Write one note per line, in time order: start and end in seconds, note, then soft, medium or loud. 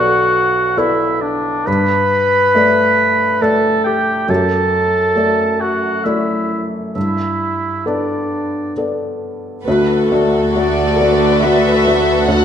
0.00 1.70 B1 medium
0.00 0.74 B3 soft
0.00 0.79 F#4 medium
0.00 0.74 A4 soft
0.00 0.74 D5 soft
0.00 0.79 F#5 medium
0.77 1.63 B3 soft
0.77 1.22 E4 medium
0.77 1.63 A4 soft
0.77 1.63 D5 soft
0.77 1.22 E5 medium
1.21 1.68 D4 medium
1.21 1.69 D5 medium
1.66 2.52 G2 medium
1.66 3.43 B4 loud
1.66 3.43 B5 medium
2.55 3.38 A3 soft
2.55 3.39 A4 soft
2.55 3.39 D5 soft
3.41 4.25 A3 soft
3.41 4.25 A4 soft
3.41 3.88 A4 medium
3.41 4.25 D5 soft
3.41 3.83 A5 medium
3.84 4.28 G4 medium
3.84 4.31 G5 medium
4.28 5.14 F#2 soft
4.28 5.62 A4 medium
4.28 5.62 A5 medium
5.16 6.01 A3 soft
5.16 6.02 A4 soft
5.16 6.02 D5 soft
5.61 6.08 F#4 medium
5.61 6.05 F#5 medium
6.04 6.91 A3 soft
6.04 6.67 E4 medium
6.04 6.92 A4 soft
6.04 6.92 D5 soft
6.04 6.66 E5 soft
6.95 7.83 G2 soft
6.95 7.89 E4 medium
6.95 7.82 E5 medium
7.86 8.72 B3 soft
7.86 8.77 D4 soft
7.86 8.72 A4 soft
7.86 8.74 D5 soft
7.86 8.73 D5 soft
8.77 9.63 B3 soft
8.77 9.63 A4 soft
8.77 9.63 D5 soft
9.64 12.45 D2 soft
9.64 12.45 D2 medium
9.64 10.10 D2 medium
9.64 12.45 A3 soft
9.64 12.45 F#4 medium
9.64 12.45 A4 medium
9.64 10.06 B4 medium
10.10 10.51 A3 soft
10.10 10.52 F#4 soft
10.10 10.55 A4 soft
10.10 10.52 D5 soft
10.54 10.95 A3 soft
10.54 10.99 F#4 medium
10.54 10.96 F#4 soft
10.54 11.38 D5 medium
10.54 10.96 D5 soft
10.98 11.40 A3 soft
10.98 11.40 F#4 soft
10.98 12.29 B4 medium
10.98 11.40 D5 soft
11.42 11.83 A3 soft
11.42 11.82 F#4 soft
11.42 11.83 D5 soft
11.42 12.29 E5 medium
11.87 12.26 A3 soft
11.87 12.26 F#4 soft
11.87 12.26 D5 soft
12.28 12.45 D2 medium
12.28 12.45 A4 soft
12.28 12.45 F#5 medium